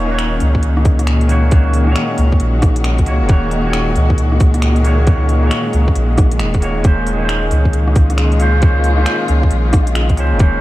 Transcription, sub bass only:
Already playing: D#1
0.41 C#2
2.18 C#2
2.40 A#1
3.07 C#2
3.21 D#1
3.30 D#1
3.96 C#2
5.74 C#2
5.96 A#1
6.18 A#1
6.40 D#1
6.85 D#1
7.51 C#2
9.29 C#2
9.51 A#1
10.18 C#2
10.32 D#1
10.40 D#1

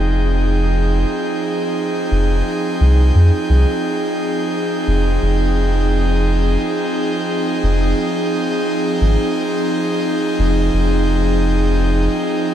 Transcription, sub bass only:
Already playing: F1
2.12 F1
2.81 C2
3.15 F2
3.49 C2
4.88 F1
5.22 F1
7.63 F1
9.01 G#1
10.39 F1
10.73 F1

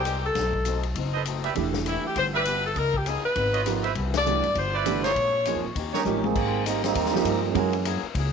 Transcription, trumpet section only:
1.14 A4 B4 C5 D#5
1.43 G4 B4 D5 E5
2.33 G4 B4 D5 E5
3.53 F4 B4 C#5 D#5
3.83 E4 B4 C5 E5
4.73 E4 B4 C5 D5
5.03 F4 G#4 A#4 C5
5.93 D#4 G4 A#4 C#5

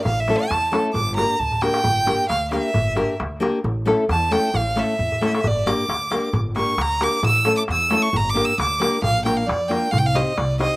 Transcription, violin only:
0.05 F5
0.20 E5
0.36 A5
0.94 D6
1.16 A#5
1.39 A5
1.62 G5
2.29 F5
2.51 E5
4.11 A5
4.32 G5
4.57 F5
4.79 E5
5.47 D5
5.68 D6
6.56 C#6
6.81 A#5
7.03 D6
7.26 E6
7.57 D6
7.72 E6
8.02 C#6
8.16 A#5
8.30 D6
8.45 E6
8.60 D6
9.04 F5
9.25 G5
9.37 F5
9.47 D5
9.68 G5
9.91 F5
9.98 G5
10.06 F5
10.15 D#5
10.37 D5
10.60 D#5

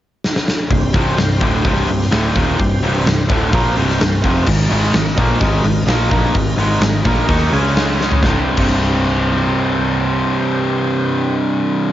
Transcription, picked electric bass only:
0.70 C1
0.94 C1
1.18 C1
1.42 D1
1.65 C1
1.88 C1
2.13 D1
2.36 D#1
2.60 C1
2.83 C1
3.06 C1
3.30 D1
3.53 A#1
3.77 C1
4.00 C1
4.24 F1
4.47 G#1
4.71 G#1
4.94 G#1
5.18 A#1
5.41 G#1
5.64 G#1
5.87 A#1
6.11 A#1
6.35 G#1
6.57 G#1
6.81 G#1
7.05 A#1
7.29 D#2
7.52 C#2
8.23 C1
8.58 C1

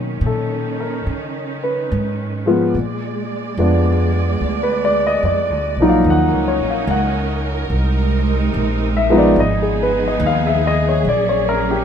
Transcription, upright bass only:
Already playing: B2
0.21 A#2
1.07 C#3
1.92 G#2
2.74 A#2
3.57 F2
4.41 D2
5.23 F2
5.50 D2
5.76 A#1
6.04 D#2
6.33 C#2
6.60 A#1
6.87 C#2
7.70 C2
8.54 A#1
9.36 G#1
10.20 D#2
11.05 A#1

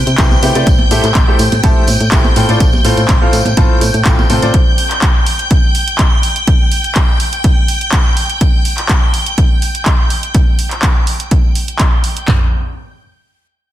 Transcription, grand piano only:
0.18 C3 E4 G4 B4 C5 G5
0.43 A3 E4 G4 B4 C5 G5
0.55 A3 E4 G4 B4 C5 D5
0.91 A3 E4 G4 A4 C5 E5
1.28 A3 E4 G4 A4 C5 E5
1.63 A3 E4 G4 A4 C5 A5
2.12 E4 G4 A4 C5 G5
2.36 A2 C4 F4 A4 C5 G5
2.49 A2 C4 F4 A4 C5 D5
2.84 A2 C4 F4 A4 C5 F5
3.22 A2 C4 F4 A4 C5 F5
3.57 A2 C4 F4 A4 C5 A5
4.06 A2 C4 F4 A4 C5 G5
4.30 C3 C4 F4 A4 C5 G5
4.42 C3 C4 F4 A4 C5 D5

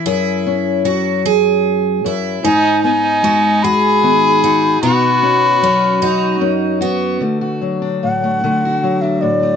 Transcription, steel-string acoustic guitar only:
0.06 F#2 G#4
0.46 C#4
0.85 F#3
2.04 F#2
2.43 G#2 D#4
2.84 B3
3.23 G#3
3.64 F#4
4.03 D#3 B3
4.44 F#4
4.83 B2 D#4
5.23 C#4
5.62 F#3
6.02 F#4
6.41 F#2 C#4
6.81 F#4
7.20 D3 A3
7.41 F#4
7.61 F#3
7.82 D4
8.03 A2
8.24 A3
8.44 D3 A3
8.65 F#4
8.83 F#3
9.03 D4
9.22 A2
9.43 A3

